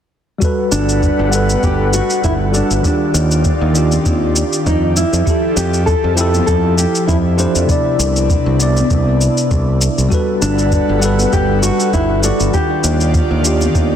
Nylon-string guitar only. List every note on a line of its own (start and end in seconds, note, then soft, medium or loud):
0.72 1.28 D4 loud
1.64 1.93 G4 loud
1.94 2.24 F#4 medium
2.24 2.32 E4 medium
2.56 2.85 D4 medium
2.86 3.42 D4 medium
4.67 4.96 D#4 medium
4.97 5.59 E4 medium
5.57 5.86 G4 medium
5.86 6.15 A4 medium
6.16 6.46 G4 medium
6.46 6.77 A4 loud
6.78 7.07 G4 medium
7.07 7.16 E4 medium
7.38 8.55 D4 medium
10.42 10.98 D4 loud
11.33 11.62 G4 loud
11.63 11.93 F#4 medium
11.93 12.24 E4 medium
12.24 12.52 F#4 medium
12.54 13.10 G4 medium